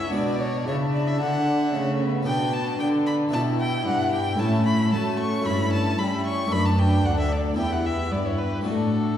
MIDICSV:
0, 0, Header, 1, 7, 480
1, 0, Start_track
1, 0, Key_signature, 2, "major"
1, 0, Tempo, 532860
1, 130, Time_signature, 4, 2, 24, 8
1, 8266, End_track
2, 0, Start_track
2, 0, Title_t, "Violin"
2, 0, Program_c, 0, 40
2, 0, Note_on_c, 0, 76, 67
2, 121, Note_off_c, 0, 76, 0
2, 127, Note_on_c, 0, 74, 71
2, 368, Note_on_c, 0, 73, 70
2, 382, Note_off_c, 0, 74, 0
2, 601, Note_off_c, 0, 73, 0
2, 607, Note_on_c, 0, 73, 73
2, 679, Note_off_c, 0, 73, 0
2, 844, Note_on_c, 0, 74, 59
2, 967, Note_on_c, 0, 76, 67
2, 981, Note_off_c, 0, 74, 0
2, 1079, Note_off_c, 0, 76, 0
2, 1084, Note_on_c, 0, 78, 74
2, 1674, Note_off_c, 0, 78, 0
2, 2041, Note_on_c, 0, 79, 76
2, 2281, Note_on_c, 0, 81, 73
2, 2295, Note_off_c, 0, 79, 0
2, 2514, Note_off_c, 0, 81, 0
2, 2519, Note_on_c, 0, 79, 67
2, 2591, Note_off_c, 0, 79, 0
2, 2761, Note_on_c, 0, 83, 67
2, 2833, Note_off_c, 0, 83, 0
2, 3001, Note_on_c, 0, 81, 84
2, 3073, Note_off_c, 0, 81, 0
2, 3245, Note_on_c, 0, 79, 77
2, 3480, Note_off_c, 0, 79, 0
2, 3485, Note_on_c, 0, 78, 75
2, 3715, Note_off_c, 0, 78, 0
2, 3721, Note_on_c, 0, 79, 71
2, 3959, Note_on_c, 0, 81, 75
2, 3972, Note_off_c, 0, 79, 0
2, 4190, Note_off_c, 0, 81, 0
2, 4196, Note_on_c, 0, 83, 73
2, 4432, Note_off_c, 0, 83, 0
2, 4437, Note_on_c, 0, 81, 71
2, 4669, Note_off_c, 0, 81, 0
2, 4674, Note_on_c, 0, 85, 73
2, 4914, Note_on_c, 0, 83, 83
2, 4927, Note_off_c, 0, 85, 0
2, 5151, Note_off_c, 0, 83, 0
2, 5157, Note_on_c, 0, 81, 81
2, 5393, Note_on_c, 0, 83, 71
2, 5407, Note_off_c, 0, 81, 0
2, 5630, Note_off_c, 0, 83, 0
2, 5635, Note_on_c, 0, 85, 77
2, 5871, Note_on_c, 0, 83, 86
2, 5885, Note_off_c, 0, 85, 0
2, 5996, Note_on_c, 0, 81, 67
2, 6010, Note_off_c, 0, 83, 0
2, 6115, Note_on_c, 0, 79, 76
2, 6128, Note_off_c, 0, 81, 0
2, 6353, Note_on_c, 0, 78, 67
2, 6367, Note_off_c, 0, 79, 0
2, 6473, Note_off_c, 0, 78, 0
2, 6482, Note_on_c, 0, 76, 60
2, 6596, Note_on_c, 0, 74, 57
2, 6609, Note_off_c, 0, 76, 0
2, 6824, Note_off_c, 0, 74, 0
2, 6830, Note_on_c, 0, 79, 76
2, 6956, Note_on_c, 0, 78, 63
2, 6970, Note_off_c, 0, 79, 0
2, 7076, Note_on_c, 0, 76, 66
2, 7090, Note_off_c, 0, 78, 0
2, 7309, Note_on_c, 0, 74, 61
2, 7323, Note_off_c, 0, 76, 0
2, 7434, Note_on_c, 0, 73, 54
2, 7448, Note_off_c, 0, 74, 0
2, 7552, Note_on_c, 0, 71, 52
2, 7565, Note_off_c, 0, 73, 0
2, 7791, Note_off_c, 0, 71, 0
2, 7797, Note_on_c, 0, 69, 64
2, 8266, Note_off_c, 0, 69, 0
2, 8266, End_track
3, 0, Start_track
3, 0, Title_t, "Violin section"
3, 0, Program_c, 1, 48
3, 0, Note_on_c, 1, 73, 47
3, 107, Note_off_c, 1, 73, 0
3, 130, Note_on_c, 1, 74, 51
3, 609, Note_off_c, 1, 74, 0
3, 610, Note_on_c, 1, 76, 51
3, 2047, Note_off_c, 1, 76, 0
3, 2051, Note_on_c, 1, 74, 52
3, 2518, Note_off_c, 1, 74, 0
3, 2527, Note_on_c, 1, 71, 49
3, 3006, Note_off_c, 1, 71, 0
3, 3008, Note_on_c, 1, 67, 51
3, 3963, Note_on_c, 1, 69, 54
3, 3964, Note_off_c, 1, 67, 0
3, 4904, Note_off_c, 1, 69, 0
3, 4915, Note_on_c, 1, 69, 47
3, 5383, Note_off_c, 1, 69, 0
3, 5395, Note_on_c, 1, 67, 48
3, 5870, Note_on_c, 1, 71, 48
3, 5873, Note_off_c, 1, 67, 0
3, 6351, Note_off_c, 1, 71, 0
3, 6354, Note_on_c, 1, 69, 49
3, 6832, Note_on_c, 1, 67, 42
3, 6835, Note_off_c, 1, 69, 0
3, 7307, Note_off_c, 1, 67, 0
3, 7317, Note_on_c, 1, 67, 42
3, 7794, Note_off_c, 1, 67, 0
3, 7803, Note_on_c, 1, 66, 44
3, 8241, Note_off_c, 1, 66, 0
3, 8266, End_track
4, 0, Start_track
4, 0, Title_t, "Violin section"
4, 0, Program_c, 2, 48
4, 0, Note_on_c, 2, 64, 48
4, 128, Note_off_c, 2, 64, 0
4, 129, Note_on_c, 2, 62, 52
4, 1539, Note_off_c, 2, 62, 0
4, 1570, Note_on_c, 2, 61, 56
4, 1808, Note_off_c, 2, 61, 0
4, 1812, Note_on_c, 2, 59, 55
4, 2048, Note_on_c, 2, 62, 51
4, 2049, Note_off_c, 2, 59, 0
4, 2512, Note_off_c, 2, 62, 0
4, 2523, Note_on_c, 2, 62, 53
4, 2995, Note_off_c, 2, 62, 0
4, 3007, Note_on_c, 2, 64, 48
4, 3947, Note_off_c, 2, 64, 0
4, 3958, Note_on_c, 2, 64, 52
4, 4427, Note_off_c, 2, 64, 0
4, 4432, Note_on_c, 2, 61, 49
4, 5371, Note_off_c, 2, 61, 0
4, 5391, Note_on_c, 2, 61, 47
4, 5862, Note_off_c, 2, 61, 0
4, 5870, Note_on_c, 2, 62, 50
4, 6830, Note_on_c, 2, 64, 43
4, 6833, Note_off_c, 2, 62, 0
4, 7306, Note_off_c, 2, 64, 0
4, 7317, Note_on_c, 2, 64, 46
4, 7794, Note_off_c, 2, 64, 0
4, 7798, Note_on_c, 2, 62, 41
4, 8266, Note_off_c, 2, 62, 0
4, 8266, End_track
5, 0, Start_track
5, 0, Title_t, "Viola section"
5, 0, Program_c, 3, 48
5, 0, Note_on_c, 3, 61, 54
5, 131, Note_off_c, 3, 61, 0
5, 133, Note_on_c, 3, 59, 46
5, 600, Note_off_c, 3, 59, 0
5, 610, Note_on_c, 3, 64, 46
5, 1088, Note_off_c, 3, 64, 0
5, 1090, Note_on_c, 3, 62, 53
5, 1569, Note_off_c, 3, 62, 0
5, 1573, Note_on_c, 3, 57, 57
5, 2049, Note_off_c, 3, 57, 0
5, 2050, Note_on_c, 3, 59, 55
5, 2514, Note_off_c, 3, 59, 0
5, 2524, Note_on_c, 3, 59, 51
5, 2995, Note_off_c, 3, 59, 0
5, 3004, Note_on_c, 3, 64, 55
5, 3480, Note_on_c, 3, 62, 58
5, 3484, Note_off_c, 3, 64, 0
5, 3959, Note_on_c, 3, 61, 45
5, 3960, Note_off_c, 3, 62, 0
5, 4428, Note_off_c, 3, 61, 0
5, 4437, Note_on_c, 3, 66, 51
5, 4906, Note_off_c, 3, 66, 0
5, 4916, Note_on_c, 3, 64, 55
5, 5381, Note_off_c, 3, 64, 0
5, 5392, Note_on_c, 3, 64, 55
5, 5862, Note_off_c, 3, 64, 0
5, 5874, Note_on_c, 3, 62, 52
5, 6834, Note_on_c, 3, 59, 57
5, 6835, Note_off_c, 3, 62, 0
5, 7801, Note_on_c, 3, 57, 44
5, 7804, Note_off_c, 3, 59, 0
5, 8266, Note_off_c, 3, 57, 0
5, 8266, End_track
6, 0, Start_track
6, 0, Title_t, "Harpsichord"
6, 0, Program_c, 4, 6
6, 0, Note_on_c, 4, 37, 40
6, 0, Note_on_c, 4, 66, 37
6, 92, Note_on_c, 4, 59, 39
6, 94, Note_off_c, 4, 37, 0
6, 94, Note_off_c, 4, 66, 0
6, 104, Note_on_c, 4, 62, 42
6, 117, Note_on_c, 4, 66, 39
6, 131, Note_on_c, 4, 47, 44
6, 573, Note_off_c, 4, 47, 0
6, 612, Note_on_c, 4, 49, 40
6, 1053, Note_off_c, 4, 49, 0
6, 1090, Note_on_c, 4, 50, 42
6, 1533, Note_off_c, 4, 50, 0
6, 1569, Note_on_c, 4, 49, 41
6, 1991, Note_off_c, 4, 59, 0
6, 1997, Note_off_c, 4, 62, 0
6, 2004, Note_off_c, 4, 66, 0
6, 2006, Note_on_c, 4, 59, 41
6, 2011, Note_off_c, 4, 49, 0
6, 2020, Note_on_c, 4, 62, 39
6, 2033, Note_on_c, 4, 71, 38
6, 2048, Note_on_c, 4, 47, 41
6, 2490, Note_off_c, 4, 47, 0
6, 2528, Note_on_c, 4, 50, 45
6, 2951, Note_off_c, 4, 62, 0
6, 2956, Note_off_c, 4, 59, 0
6, 2962, Note_on_c, 4, 62, 39
6, 2970, Note_off_c, 4, 71, 0
6, 2971, Note_off_c, 4, 50, 0
6, 2974, Note_on_c, 4, 64, 41
6, 2988, Note_on_c, 4, 71, 44
6, 3002, Note_on_c, 4, 47, 45
6, 3447, Note_off_c, 4, 47, 0
6, 3487, Note_on_c, 4, 43, 44
6, 3911, Note_off_c, 4, 62, 0
6, 3918, Note_off_c, 4, 64, 0
6, 3924, Note_on_c, 4, 57, 40
6, 3925, Note_off_c, 4, 71, 0
6, 3927, Note_off_c, 4, 43, 0
6, 3936, Note_on_c, 4, 64, 42
6, 3951, Note_on_c, 4, 73, 36
6, 3964, Note_on_c, 4, 45, 40
6, 4404, Note_off_c, 4, 45, 0
6, 4427, Note_off_c, 4, 57, 0
6, 4438, Note_on_c, 4, 57, 40
6, 4868, Note_off_c, 4, 57, 0
6, 4874, Note_off_c, 4, 64, 0
6, 4879, Note_on_c, 4, 57, 40
6, 4882, Note_off_c, 4, 73, 0
6, 4893, Note_on_c, 4, 64, 39
6, 4906, Note_on_c, 4, 73, 40
6, 4920, Note_on_c, 4, 43, 42
6, 5359, Note_off_c, 4, 43, 0
6, 5393, Note_on_c, 4, 55, 45
6, 5824, Note_off_c, 4, 57, 0
6, 5832, Note_off_c, 4, 64, 0
6, 5834, Note_on_c, 4, 57, 36
6, 5836, Note_off_c, 4, 55, 0
6, 5838, Note_off_c, 4, 73, 0
6, 5847, Note_on_c, 4, 62, 36
6, 5861, Note_on_c, 4, 69, 37
6, 5873, Note_on_c, 4, 42, 44
6, 6316, Note_off_c, 4, 42, 0
6, 6352, Note_on_c, 4, 38, 34
6, 6785, Note_off_c, 4, 57, 0
6, 6792, Note_off_c, 4, 62, 0
6, 6794, Note_on_c, 4, 59, 35
6, 6798, Note_off_c, 4, 38, 0
6, 6799, Note_off_c, 4, 69, 0
6, 6808, Note_on_c, 4, 64, 35
6, 6821, Note_on_c, 4, 67, 39
6, 6835, Note_on_c, 4, 40, 40
6, 7282, Note_off_c, 4, 40, 0
6, 7312, Note_on_c, 4, 43, 37
6, 7754, Note_off_c, 4, 59, 0
6, 7760, Note_on_c, 4, 57, 33
6, 7762, Note_off_c, 4, 64, 0
6, 7765, Note_off_c, 4, 43, 0
6, 7768, Note_off_c, 4, 67, 0
6, 7772, Note_on_c, 4, 62, 33
6, 7785, Note_on_c, 4, 66, 35
6, 7798, Note_on_c, 4, 45, 37
6, 8252, Note_off_c, 4, 45, 0
6, 8266, Note_off_c, 4, 57, 0
6, 8266, Note_off_c, 4, 62, 0
6, 8266, Note_off_c, 4, 66, 0
6, 8266, End_track
7, 0, Start_track
7, 0, Title_t, "Cello section"
7, 0, Program_c, 5, 48
7, 0, Note_on_c, 5, 37, 54
7, 128, Note_on_c, 5, 47, 60
7, 130, Note_off_c, 5, 37, 0
7, 598, Note_off_c, 5, 47, 0
7, 607, Note_on_c, 5, 49, 57
7, 1086, Note_off_c, 5, 49, 0
7, 1087, Note_on_c, 5, 50, 56
7, 1566, Note_on_c, 5, 49, 61
7, 1567, Note_off_c, 5, 50, 0
7, 2044, Note_on_c, 5, 47, 58
7, 2045, Note_off_c, 5, 49, 0
7, 2514, Note_off_c, 5, 47, 0
7, 2523, Note_on_c, 5, 50, 56
7, 2995, Note_off_c, 5, 50, 0
7, 3001, Note_on_c, 5, 47, 57
7, 3473, Note_off_c, 5, 47, 0
7, 3481, Note_on_c, 5, 43, 57
7, 3960, Note_on_c, 5, 45, 60
7, 3961, Note_off_c, 5, 43, 0
7, 4436, Note_on_c, 5, 57, 61
7, 4438, Note_off_c, 5, 45, 0
7, 4911, Note_on_c, 5, 43, 55
7, 4915, Note_off_c, 5, 57, 0
7, 5391, Note_off_c, 5, 43, 0
7, 5391, Note_on_c, 5, 55, 55
7, 5861, Note_off_c, 5, 55, 0
7, 5867, Note_on_c, 5, 42, 57
7, 6340, Note_off_c, 5, 42, 0
7, 6348, Note_on_c, 5, 38, 52
7, 6822, Note_off_c, 5, 38, 0
7, 6829, Note_on_c, 5, 40, 47
7, 7306, Note_off_c, 5, 40, 0
7, 7314, Note_on_c, 5, 43, 54
7, 7797, Note_on_c, 5, 45, 46
7, 7802, Note_off_c, 5, 43, 0
7, 8266, Note_off_c, 5, 45, 0
7, 8266, End_track
0, 0, End_of_file